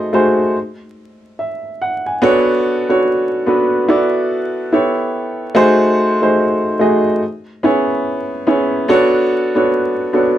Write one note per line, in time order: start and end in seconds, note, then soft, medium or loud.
0.00 0.13 A3 loud
0.00 0.13 D#4 loud
0.00 0.14 F#4 loud
0.00 0.14 G#4 loud
0.00 0.14 C5 loud
0.00 0.57 D#5 medium
0.13 0.54 A3 medium
0.13 0.55 D#4 medium
0.13 0.55 F#4 medium
0.13 0.55 G#4 medium
0.13 0.55 C5 medium
1.39 1.78 E5 medium
1.82 2.04 F#5 medium
2.06 2.45 G#5 medium
2.22 2.72 B3 loud
2.22 2.72 D4 loud
2.22 2.72 F#4 loud
2.22 2.73 A4 loud
2.22 2.73 C#5 loud
2.89 3.36 B3 medium
2.89 3.36 D4 medium
2.89 3.36 F#4 medium
2.89 3.36 A4 medium
2.89 3.36 C#5 loud
3.46 3.87 B3 medium
3.46 3.88 D4 medium
3.46 3.87 F#4 medium
3.46 3.88 A4 medium
3.46 3.89 B4 medium
3.88 4.58 B3 loud
3.88 4.58 E4 medium
3.88 4.58 F#4 medium
3.88 4.58 A4 medium
3.88 4.59 D5 loud
4.72 5.42 B3 medium
4.72 5.42 E4 medium
4.72 5.42 G4 medium
4.72 5.42 A4 medium
4.72 5.42 C#5 loud
5.55 6.05 A3 loud
5.55 6.05 D#4 loud
5.55 6.05 F#4 loud
5.55 6.06 G#4 loud
5.55 6.06 C5 loud
6.21 6.69 A3 medium
6.21 6.69 D#4 medium
6.21 6.69 F#4 medium
6.21 6.69 G#4 medium
6.21 6.69 C5 medium
6.79 7.21 A3 medium
6.79 7.21 D#4 medium
6.79 7.22 F#4 medium
6.79 7.22 G#4 medium
6.79 7.22 D#5 medium
7.63 8.32 B3 loud
7.63 8.32 C#4 medium
7.63 8.32 E4 medium
7.63 8.32 G#4 medium
7.63 8.33 C#5 loud
8.47 8.81 B3 loud
8.47 8.81 C#4 medium
8.47 8.81 E4 medium
8.47 8.82 G#4 medium
8.47 8.82 C#5 loud
8.88 9.38 B3 loud
8.88 9.39 D4 loud
8.88 9.39 F#4 loud
8.88 9.39 A4 loud
8.88 9.39 C#5 loud
9.55 10.02 B3 medium
9.55 10.02 D4 medium
9.55 10.03 F#4 medium
9.55 10.03 A4 medium
9.55 10.03 C#5 medium
10.13 10.38 B3 medium
10.13 10.38 D4 medium
10.13 10.38 F#4 medium
10.13 10.38 A4 medium
10.13 10.38 C#5 medium